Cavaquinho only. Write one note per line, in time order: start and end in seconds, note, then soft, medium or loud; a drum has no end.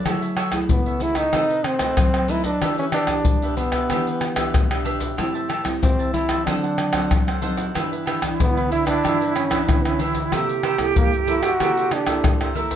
0.05 0.20 F#4 medium
0.05 0.21 A4 medium
0.05 0.21 C#5 medium
0.05 0.20 E5 medium
0.21 0.36 A4 soft
0.21 0.36 C#5 soft
0.21 0.36 E5 soft
0.36 0.51 F#4 medium
0.36 0.51 A4 medium
0.36 0.51 C#5 medium
0.36 0.51 E5 medium
0.52 muted cavaquinho stroke soft
0.86 1.00 A4 soft
0.86 1.01 C#5 soft
0.86 1.01 E5 soft
1.00 1.16 F#4 soft
1.00 1.16 A4 soft
1.00 1.15 C#5 soft
1.00 1.14 E5 soft
1.15 1.32 A4 medium
1.15 1.32 C#5 medium
1.15 1.31 E5 medium
1.33 1.48 D#4 medium
1.33 1.48 A4 medium
1.33 1.49 B4 medium
1.33 1.49 D#5 medium
1.50 1.64 A4 soft
1.50 1.64 B4 soft
1.50 1.64 D#5 soft
1.65 muted cavaquinho stroke soft
1.79 2.12 A4 soft
1.79 2.12 B4 medium
1.79 2.11 D#5 medium
2.14 2.28 A4 soft
2.14 2.29 B4 soft
2.14 2.29 D#5 soft
2.28 2.44 D#4 medium
2.28 2.44 A4 medium
2.28 2.43 B4 medium
2.28 2.42 D#5 medium
2.43 2.60 A4 soft
2.43 2.60 B4 soft
2.43 2.59 D#5 soft
2.61 2.76 D4 medium
2.61 2.77 G4 medium
2.61 2.77 B4 medium
2.61 2.77 E5 medium
2.78 2.92 G4 soft
2.78 2.93 B4 soft
2.78 2.93 E5 medium
2.93 3.07 D4 medium
2.93 3.08 G4 medium
2.93 3.08 B4 medium
2.93 3.08 E5 medium
3.09 muted cavaquinho stroke soft
3.43 3.57 G4 soft
3.43 3.57 B4 soft
3.43 3.57 E5 soft
3.57 3.72 D4 soft
3.57 3.73 G4 soft
3.57 3.72 B4 soft
3.57 3.71 E5 soft
3.72 3.89 G4 medium
3.72 3.88 B4 medium
3.72 3.88 E5 medium
3.89 4.05 D4 medium
3.89 4.05 G4 medium
3.89 4.05 B4 medium
3.89 4.06 E5 medium
4.07 4.20 G4 soft
4.07 4.20 B4 soft
4.07 4.20 E5 medium
4.21 muted cavaquinho stroke soft
4.36 4.69 G4 soft
4.36 4.69 B4 medium
4.36 4.68 E5 medium
4.70 4.84 G4 soft
4.70 4.85 B4 soft
4.70 4.85 E5 soft
4.84 5.00 D4 medium
4.84 5.00 G4 medium
4.84 4.99 B4 medium
4.84 4.98 E5 medium
4.99 5.16 G4 soft
4.99 5.16 B4 soft
4.99 5.16 E5 soft
5.17 5.33 G4 medium
5.17 5.33 C5 medium
5.17 5.33 E5 medium
5.17 5.33 A5 medium
5.34 5.48 C5 soft
5.34 5.48 E5 soft
5.34 5.49 A5 soft
5.49 5.63 G4 medium
5.49 5.63 C5 medium
5.49 5.64 E5 medium
5.49 5.64 A5 medium
5.64 muted cavaquinho stroke soft
5.99 6.13 C5 soft
5.99 6.14 E5 soft
5.99 6.14 A5 soft
6.14 6.29 G4 soft
6.14 6.29 C5 soft
6.14 6.29 E5 soft
6.14 6.28 A5 soft
6.29 6.45 C5 medium
6.29 6.45 E5 medium
6.29 6.45 A5 medium
6.47 6.62 D4 medium
6.47 6.62 A4 medium
6.47 6.62 C5 medium
6.47 6.62 F#5 medium
6.63 6.77 A4 soft
6.63 6.77 C5 soft
6.63 6.77 F#5 soft
6.77 muted cavaquinho stroke soft
6.92 7.25 A4 soft
6.92 7.25 C5 medium
6.92 7.24 F#5 medium
7.27 7.41 A4 soft
7.27 7.41 C5 soft
7.27 7.42 F#5 medium
7.41 7.57 D4 medium
7.41 7.57 A4 medium
7.41 7.56 C5 medium
7.41 7.56 F#5 medium
7.57 7.74 A4 soft
7.57 7.73 C5 soft
7.57 7.73 F#5 soft
7.74 7.90 D4 medium
7.74 7.90 G4 medium
7.74 7.90 B4 medium
7.74 7.90 E5 medium
7.92 8.06 G4 soft
7.92 8.06 B4 soft
7.92 8.06 E5 soft
8.06 8.19 D4 medium
8.06 8.20 G4 medium
8.06 8.20 B4 medium
8.06 8.20 E5 medium
8.21 muted cavaquinho stroke soft
8.56 8.70 G4 soft
8.56 8.70 B4 soft
8.56 8.70 E5 soft
8.70 8.86 D4 soft
8.70 8.86 G4 medium
8.70 8.84 B4 soft
8.70 8.84 E5 medium
8.85 9.02 G4 medium
8.85 9.01 B4 medium
8.85 9.01 E5 medium
9.03 9.18 D4 medium
9.03 9.18 G4 medium
9.03 9.19 B4 medium
9.03 9.19 E5 medium
9.20 9.34 G4 soft
9.20 9.34 B4 soft
9.20 9.35 E5 medium
9.35 muted cavaquinho stroke soft
9.49 9.82 G4 medium
9.49 9.82 B4 medium
9.49 9.81 E5 medium
9.85 9.99 G4 soft
9.85 9.99 B4 soft
9.85 9.99 E5 soft
9.99 10.14 D4 medium
9.99 10.15 G4 medium
9.99 10.14 B4 medium
9.99 10.13 E5 medium
10.14 10.31 G4 soft
10.14 10.30 B4 soft
10.14 10.30 E5 medium
10.32 10.47 E4 medium
10.32 10.47 A#4 medium
10.32 10.47 C5 medium
10.32 10.48 E5 medium
10.49 10.63 A#4 soft
10.49 10.63 C5 soft
10.49 10.63 E5 soft
10.63 10.78 E4 medium
10.63 10.78 A#4 medium
10.63 10.78 C5 medium
10.63 10.79 E5 medium
10.79 muted cavaquinho stroke soft
11.13 11.26 A#4 soft
11.13 11.27 C5 soft
11.13 11.27 E5 soft
11.27 11.42 E4 soft
11.27 11.43 A#4 medium
11.27 11.42 C5 soft
11.27 11.41 E5 medium
11.42 11.59 A#4 medium
11.42 11.58 C5 medium
11.42 11.58 E5 medium
11.60 11.75 E4 medium
11.60 11.75 A#4 medium
11.60 11.76 C5 medium
11.60 11.76 E5 medium
11.77 11.91 A#4 soft
11.77 11.91 C5 soft
11.77 11.91 E5 soft
11.91 muted cavaquinho stroke soft
12.06 12.39 A#4 soft
12.06 12.39 C5 medium
12.06 12.38 E5 medium
12.41 12.54 A#4 soft
12.41 12.55 C5 soft
12.41 12.55 E5 medium
12.55 12.70 E4 medium
12.55 12.71 A#4 medium
12.55 12.70 C5 medium
12.55 12.70 E5 medium
12.71 12.76 A#4 soft
12.71 12.76 C5 soft
12.71 12.76 E5 medium